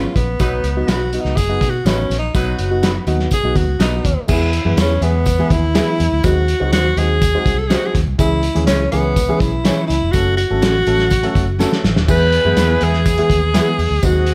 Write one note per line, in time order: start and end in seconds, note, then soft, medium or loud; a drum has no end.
0.00 0.16 G#3 medium
0.00 0.17 B3 medium
0.00 0.17 C#4 medium
0.00 0.17 F4 medium
0.15 0.35 A#1 loud
0.15 0.88 B3 medium
0.15 kick medium
0.15 closed hi-hat medium
0.15 tambourine medium
0.39 0.59 B1 loud
0.39 0.59 F#3 medium
0.39 0.75 F#3 medium
0.39 0.59 B3 medium
0.39 0.75 D#4 medium
0.39 0.59 D#4 medium
0.39 0.59 F#4 medium
0.39 0.74 B4 loud
0.39 kick loud
0.39 closed hi-hat medium
0.39 tambourine loud
0.64 0.83 C#2 medium
0.64 closed hi-hat medium
0.64 tambourine medium
0.76 0.95 F#3 medium
0.76 0.96 B3 medium
0.76 0.96 D#4 medium
0.76 0.96 F#4 medium
0.87 1.17 B1 medium
0.87 0.99 D#4 medium
0.87 1.00 F#4 medium
0.87 1.22 F#4 loud
0.87 1.00 B4 loud
0.87 snare loud
0.87 closed hi-hat loud
0.87 tambourine medium
1.13 1.32 F#3 medium
1.13 1.32 B3 medium
1.13 1.32 D#4 medium
1.13 1.32 F#4 medium
1.13 closed hi-hat medium
1.13 tambourine medium
1.21 1.34 C#2 medium
1.21 1.38 D#4 loud
1.25 snare soft
1.36 1.56 F#1 medium
1.36 1.71 G#4 loud
1.36 kick loud
1.36 closed hi-hat medium
1.36 tambourine loud
1.48 1.68 F#3 medium
1.48 1.68 B3 medium
1.48 1.68 D#4 medium
1.48 1.68 F#4 medium
1.61 1.80 B2 loud
1.61 kick loud
1.61 closed hi-hat medium
1.61 tambourine medium
1.70 1.87 F#4 loud
1.85 2.05 A1 loud
1.85 2.12 F#3 medium
1.85 2.12 B3 medium
1.85 2.18 C#4 medium
1.85 1.97 D#4 medium
1.85 2.12 D#4 medium
1.85 1.98 F#4 medium
1.85 2.12 F#4 medium
1.85 1.98 B4 medium
1.85 snare loud
1.85 closed hi-hat medium
1.85 tambourine loud
2.10 2.29 A#1 medium
2.10 snare soft
2.10 closed hi-hat medium
2.10 tambourine medium
2.19 2.37 D#4 loud
2.34 2.54 B1 loud
2.34 2.54 F#3 medium
2.34 2.69 F#3 loud
2.34 2.54 B3 medium
2.34 2.69 D#4 medium
2.34 2.54 D#4 medium
2.34 3.08 F#4 medium
2.34 2.54 F#4 medium
2.34 2.69 B4 loud
2.34 kick loud
2.34 closed hi-hat medium
2.34 tambourine loud
2.59 2.97 F#1 medium
2.59 closed hi-hat medium
2.59 tambourine medium
2.70 2.90 F#3 medium
2.70 2.90 B3 medium
2.70 2.90 D#4 medium
2.70 2.90 F#4 medium
2.83 2.95 D#4 medium
2.83 2.95 F#4 medium
2.83 2.95 B4 medium
2.83 snare loud
2.83 closed hi-hat loud
2.83 tambourine medium
3.07 3.26 D#2 loud
3.07 3.26 F#3 loud
3.07 3.26 B3 medium
3.07 3.27 D#4 medium
3.07 3.27 F#4 loud
3.07 closed hi-hat medium
3.07 tambourine medium
3.19 snare soft
3.31 3.58 G#4 loud
3.31 kick loud
3.31 closed hi-hat medium
3.31 tambourine loud
3.44 3.53 B1 medium
3.44 3.63 F#3 medium
3.44 3.63 B3 medium
3.44 3.63 D#4 medium
3.44 3.64 F#4 medium
3.55 3.66 D#2 medium
3.55 3.81 F#4 loud
3.55 kick loud
3.55 closed hi-hat medium
3.55 tambourine medium
3.67 3.77 C#2 loud
3.79 3.99 B1 medium
3.79 4.06 F#3 medium
3.79 4.06 B3 medium
3.79 3.92 D#4 medium
3.79 4.06 D#4 medium
3.79 4.26 D#4 medium
3.79 3.92 F#4 loud
3.79 4.06 F#4 medium
3.79 3.93 B4 medium
3.79 snare loud
3.79 closed hi-hat medium
3.79 tambourine loud
4.04 4.14 D#2 medium
4.04 kick loud
4.04 closed hi-hat medium
4.04 tambourine medium
4.27 4.58 E2 loud
4.27 4.48 E3 medium
4.27 4.48 G#3 medium
4.27 4.48 B3 medium
4.27 4.48 E4 medium
4.27 4.48 G#4 medium
4.27 kick loud
4.27 crash loud
4.27 tambourine loud
4.32 4.76 E4 loud
4.53 closed hi-hat medium
4.53 tambourine medium
4.65 4.75 F#2 medium
4.65 4.85 E3 medium
4.65 4.85 G#3 medium
4.65 4.85 B3 medium
4.65 4.85 E4 medium
4.65 4.85 B4 medium
4.77 4.97 E2 medium
4.77 5.05 C#4 medium
4.77 4.89 E4 medium
4.77 4.90 G#4 medium
4.77 4.90 B4 medium
4.77 snare loud
4.77 closed hi-hat loud
4.77 tambourine loud
5.01 5.40 E2 loud
5.01 5.21 E3 medium
5.01 5.21 G#3 medium
5.01 5.22 B3 medium
5.01 5.53 B3 loud
5.01 5.22 E4 medium
5.01 5.22 G#4 medium
5.01 closed hi-hat medium
5.01 tambourine medium
5.26 kick loud
5.26 closed hi-hat loud
5.26 tambourine loud
5.39 5.58 E3 medium
5.39 5.58 G#3 medium
5.39 5.58 B3 medium
5.39 5.58 E4 medium
5.39 5.59 G#4 medium
5.50 5.80 D#2 loud
5.50 6.26 E4 loud
5.50 kick loud
5.50 closed hi-hat medium
5.50 tambourine medium
5.74 6.01 E3 medium
5.74 6.01 G#3 medium
5.74 6.01 B3 medium
5.74 5.87 E4 medium
5.74 6.01 E4 medium
5.74 6.01 G#4 medium
5.74 5.87 G#4 medium
5.74 5.88 B4 loud
5.74 snare loud
5.74 closed hi-hat medium
5.74 tambourine loud
6.00 6.10 E2 loud
6.00 closed hi-hat medium
6.00 tambourine medium
6.12 6.22 D2 medium
6.24 6.53 D#2 loud
6.24 6.43 F#3 medium
6.24 6.43 G#3 medium
6.24 6.43 C4 medium
6.24 6.44 D#4 medium
6.24 6.73 F#4 loud
6.24 6.44 F#4 medium
6.24 kick loud
6.24 closed hi-hat medium
6.24 tambourine loud
6.48 closed hi-hat medium
6.48 tambourine medium
6.60 6.71 C#2 medium
6.60 6.80 F#3 medium
6.60 6.80 G#3 medium
6.60 6.80 C4 medium
6.60 6.80 D#4 medium
6.60 6.80 F#4 medium
6.72 6.92 D#2 medium
6.72 6.84 D#4 medium
6.72 6.85 F#4 medium
6.72 6.99 F#4 loud
6.72 6.85 C5 medium
6.72 snare loud
6.72 closed hi-hat loud
6.72 tambourine loud
6.97 7.36 D#2 loud
6.97 7.17 F#3 medium
6.97 7.17 G#3 medium
6.97 7.17 C4 medium
6.97 7.17 D#4 medium
6.97 7.17 F#4 medium
6.97 7.60 G#4 loud
6.97 closed hi-hat medium
6.97 tambourine medium
7.22 kick loud
7.22 closed hi-hat medium
7.22 tambourine loud
7.34 7.53 F#3 medium
7.34 7.53 G#3 medium
7.34 7.54 C4 medium
7.34 7.54 D#4 medium
7.34 7.54 F#4 medium
7.46 7.75 C2 medium
7.46 kick loud
7.46 closed hi-hat medium
7.46 tambourine medium
7.58 7.69 A4 medium
7.67 7.96 F#3 medium
7.67 7.96 G#3 medium
7.67 7.82 D#4 medium
7.67 7.82 F#4 medium
7.67 7.78 G#4 medium
7.67 snare loud
7.67 closed hi-hat medium
7.67 tambourine loud
7.71 7.97 C4 medium
7.71 7.97 D#4 medium
7.71 7.97 F#4 medium
7.71 7.82 C5 medium
7.77 7.88 F#4 medium
7.86 7.95 G#4 medium
7.95 8.04 D#2 medium
7.95 kick loud
7.95 snare soft
7.95 closed hi-hat medium
7.95 tambourine medium
8.07 8.16 C2 medium
8.18 8.48 C#2 loud
8.18 8.38 E3 medium
8.18 8.38 G#3 medium
8.18 8.38 C#4 medium
8.18 8.38 E4 medium
8.18 8.65 E4 loud
8.18 8.39 G#4 medium
8.18 kick loud
8.18 closed hi-hat medium
8.18 tambourine loud
8.43 closed hi-hat medium
8.43 tambourine medium
8.55 8.65 D#2 medium
8.55 8.74 E3 medium
8.55 8.74 G#3 medium
8.55 8.75 C#4 medium
8.55 8.75 E4 medium
8.55 8.75 G#4 medium
8.55 closed hi-hat medium
8.67 8.87 C#2 loud
8.67 8.90 C#4 loud
8.67 8.79 E4 medium
8.67 8.79 G#4 loud
8.67 8.80 C#5 loud
8.67 snare loud
8.67 closed hi-hat loud
8.67 tambourine loud
8.92 9.31 C#2 loud
8.92 9.11 E3 medium
8.92 9.12 G#3 medium
8.92 9.42 B3 medium
8.92 9.12 C#4 medium
8.92 9.12 E4 medium
8.92 9.12 G#4 medium
8.92 closed hi-hat medium
8.92 tambourine medium
9.16 kick loud
9.16 closed hi-hat medium
9.16 tambourine loud
9.28 9.48 E3 medium
9.28 9.48 G#3 medium
9.28 9.48 C#4 medium
9.28 9.48 E4 medium
9.28 9.48 G#4 medium
9.40 9.70 B1 loud
9.40 9.87 E4 loud
9.40 kick loud
9.40 closed hi-hat medium
9.40 tambourine medium
9.64 9.91 E3 medium
9.64 9.91 G#3 medium
9.64 9.91 C#4 medium
9.64 9.76 E4 medium
9.64 9.91 E4 medium
9.64 9.77 G#4 medium
9.64 9.92 G#4 medium
9.64 9.77 C#5 medium
9.64 snare loud
9.64 closed hi-hat medium
9.64 tambourine loud
9.87 9.99 C#2 medium
9.87 10.13 E4 loud
9.87 closed hi-hat medium
9.87 tambourine medium
10.02 10.12 F1 medium
10.12 10.43 F#1 loud
10.12 10.33 F#3 medium
10.12 10.33 A3 medium
10.12 10.33 C#4 medium
10.12 10.37 F#4 loud
10.12 10.33 F#4 medium
10.12 10.33 A4 medium
10.12 kick loud
10.12 closed hi-hat medium
10.12 tambourine loud
10.37 11.80 F#4 loud
10.37 closed hi-hat medium
10.37 tambourine medium
10.50 10.60 G#1 medium
10.50 10.69 F#3 medium
10.50 10.70 A3 medium
10.50 10.70 C#4 medium
10.50 10.70 F#4 medium
10.50 10.70 A4 medium
10.62 10.82 A1 medium
10.62 10.74 C#4 medium
10.62 10.74 F#4 medium
10.62 10.75 A4 loud
10.62 snare loud
10.62 closed hi-hat loud
10.62 tambourine loud
10.86 11.25 A1 loud
10.86 11.06 F#3 medium
10.86 11.06 A3 medium
10.86 11.06 C#4 medium
10.86 11.06 F#4 medium
10.86 11.06 A4 medium
10.86 closed hi-hat medium
10.86 tambourine medium
10.99 snare soft
11.10 kick loud
11.10 closed hi-hat medium
11.10 tambourine loud
11.23 11.42 F#3 medium
11.23 11.42 A3 medium
11.23 11.43 C#4 medium
11.23 11.43 F#4 medium
11.23 11.43 A4 loud
11.23 closed hi-hat medium
11.35 11.64 F#1 medium
11.35 kick loud
11.35 closed hi-hat medium
11.35 tambourine medium
11.59 11.85 F#3 medium
11.59 11.86 A3 medium
11.59 11.71 C#4 medium
11.59 11.85 C#4 medium
11.59 11.86 F#4 medium
11.59 11.72 F#4 medium
11.59 11.86 A4 loud
11.59 11.72 A4 medium
11.59 snare medium
11.59 tambourine loud
11.72 snare medium
11.84 11.94 A1 medium
11.84 snare loud
11.84 tambourine medium
11.96 12.06 D#1 loud
11.96 snare loud
12.08 12.38 E2 loud
12.08 12.27 E3 medium
12.08 12.28 G#3 medium
12.08 12.28 B3 medium
12.08 13.76 B3 medium
12.08 13.76 E4 medium
12.08 12.28 E4 medium
12.08 12.28 G#4 medium
12.08 13.76 G#4 loud
12.08 12.85 B4 loud
12.08 kick loud
12.08 tambourine loud
12.08 crash medium
12.32 closed hi-hat medium
12.32 tambourine medium
12.44 12.55 F#2 medium
12.44 12.64 E3 medium
12.44 12.64 G#3 medium
12.44 12.64 B3 medium
12.44 12.65 E4 medium
12.44 12.65 G#4 medium
12.57 12.76 E2 medium
12.57 12.69 B3 loud
12.57 12.69 E4 loud
12.57 12.70 G#4 loud
12.57 snare loud
12.57 closed hi-hat loud
12.57 tambourine loud
12.81 13.20 E2 loud
12.81 13.00 E3 medium
12.81 13.01 G#3 medium
12.81 13.01 B3 medium
12.81 13.01 E4 medium
12.81 13.01 G#4 medium
12.81 14.06 G#4 loud
12.81 closed hi-hat medium
12.81 tambourine medium
12.93 snare soft
13.05 kick loud
13.05 closed hi-hat medium
13.05 tambourine loud
13.18 13.37 E3 medium
13.18 13.37 G#3 medium
13.18 13.38 B3 medium
13.18 13.37 E4 medium
13.18 13.38 G#4 medium
13.18 closed hi-hat medium
13.30 13.59 D#2 loud
13.30 kick loud
13.30 closed hi-hat medium
13.30 tambourine medium
13.54 13.80 E3 medium
13.54 13.80 G#3 medium
13.54 13.66 B3 medium
13.54 13.80 B3 medium
13.54 13.80 E4 medium
13.54 13.66 E4 medium
13.54 13.80 G#4 medium
13.54 13.67 G#4 loud
13.54 snare loud
13.54 closed hi-hat medium
13.54 tambourine loud
13.78 13.88 E2 medium
13.78 open hi-hat medium
13.78 tambourine medium
13.91 14.00 D2 medium
14.02 14.32 D#2 loud
14.02 14.22 F#3 medium
14.02 14.22 G#3 medium
14.02 14.34 C4 medium
14.02 14.22 C4 medium
14.02 14.22 D#4 medium
14.02 14.22 F#4 medium
14.02 14.34 F#4 loud
14.02 14.34 G#4 medium
14.02 14.34 D#5 loud
14.02 kick loud
14.02 closed hi-hat medium
14.02 tambourine loud
14.26 closed hi-hat medium
14.26 tambourine medium